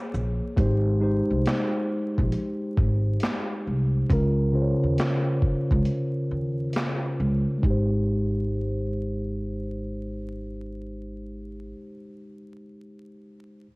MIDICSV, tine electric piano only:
0, 0, Header, 1, 2, 480
1, 0, Start_track
1, 0, Key_signature, -4, "major"
1, 0, Tempo, 882353
1, 310, Time_signature, 4, 2, 24, 8
1, 7484, End_track
2, 0, Start_track
2, 0, Title_t, "Tine electric piano"
2, 0, Program_c, 0, 4
2, 0, Control_c, 0, 64, 127
2, 307, Note_on_c, 0, 56, 90
2, 314, Note_on_c, 0, 63, 69
2, 317, Control_c, 0, 64, 0
2, 319, Note_on_c, 0, 67, 72
2, 326, Note_on_c, 0, 72, 87
2, 407, Control_c, 0, 64, 127
2, 526, Note_off_c, 0, 56, 0
2, 530, Note_off_c, 0, 63, 0
2, 532, Note_off_c, 0, 67, 0
2, 536, Note_off_c, 0, 72, 0
2, 544, Note_on_c, 0, 56, 71
2, 550, Note_on_c, 0, 63, 75
2, 554, Note_on_c, 0, 67, 61
2, 561, Note_on_c, 0, 72, 80
2, 1417, Note_off_c, 0, 56, 0
2, 1420, Note_off_c, 0, 63, 0
2, 1422, Note_off_c, 0, 67, 0
2, 1426, Note_off_c, 0, 72, 0
2, 2231, Note_on_c, 0, 49, 76
2, 2236, Note_on_c, 0, 61, 66
2, 2238, Control_c, 0, 64, 0
2, 2243, Note_on_c, 0, 65, 69
2, 2247, Note_on_c, 0, 70, 98
2, 2324, Control_c, 0, 64, 127
2, 2448, Note_off_c, 0, 49, 0
2, 2451, Note_off_c, 0, 61, 0
2, 2454, Note_off_c, 0, 65, 0
2, 2456, Note_off_c, 0, 70, 0
2, 2461, Note_on_c, 0, 49, 80
2, 2468, Note_on_c, 0, 61, 65
2, 2474, Note_on_c, 0, 65, 68
2, 2478, Note_on_c, 0, 72, 70
2, 2513, Note_on_c, 0, 73, 70
2, 2519, Note_off_c, 0, 72, 0
2, 3335, Note_off_c, 0, 49, 0
2, 3339, Note_off_c, 0, 61, 0
2, 3342, Note_off_c, 0, 65, 0
2, 3361, Note_off_c, 0, 73, 0
2, 4123, Note_on_c, 0, 56, 67
2, 4145, Note_on_c, 0, 63, 67
2, 4157, Control_c, 0, 64, 0
2, 4167, Note_on_c, 0, 67, 68
2, 4190, Note_on_c, 0, 72, 83
2, 4243, Control_c, 0, 64, 127
2, 6341, Note_off_c, 0, 56, 0
2, 6363, Note_off_c, 0, 63, 0
2, 6386, Note_off_c, 0, 67, 0
2, 6408, Note_off_c, 0, 72, 0
2, 7436, Control_c, 0, 64, 0
2, 7484, End_track
0, 0, End_of_file